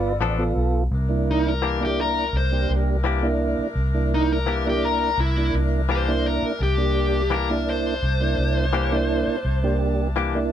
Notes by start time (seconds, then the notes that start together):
Already playing: G1 B3 F4 A4 B4 D5
0.20 A1 F3 B3 D4 A4
0.38 B3 F4 A4
0.56 B1
0.91 C2 D4 E4 A#4
1.09 A#3 D4 E4
1.31 D#4
1.48 A#4
1.62 E3 A#3 D4 G4
1.80 A#3 D4 E4
1.85 G4
2.01 A#4
2.33 C2 C5
2.52 A#3 D4 G4
2.69 C2
3.04 E3 A#3 D4 G4
3.22 A#3 D4 E4
3.59 muted fingered electric bass stroke
3.75 C2
3.94 A#3 D4 E4
4.14 D#4
4.33 A#4
4.46 E3 A#3 D4 G4
4.65 A#3 D4 E4 G4
4.85 A#4
5.18 C2 E4
5.37 A#3 D4 E4
5.53 C2
5.89 E3 A#3 D4 G4 C5
6.08 A#3 D4 E4
6.26 A#4
6.42 muted fingered electric bass stroke
6.60 C2 G4 A5
6.77 A#3 D4 G4
7.30 E3 A#3 D4 G4 A#4
7.50 A#3 D4 E4
7.69 C5
8.03 C2
8.20 A#3 D4 E4
8.38 C2
8.73 E3 A#3 D4 G4
8.92 A#3 D4 E4
9.27 muted fingered electric bass stroke
9.45 C2
9.63 A#3 D4 G4
10.16 E3 A#3 D4 G4
10.35 A#3 D4 E4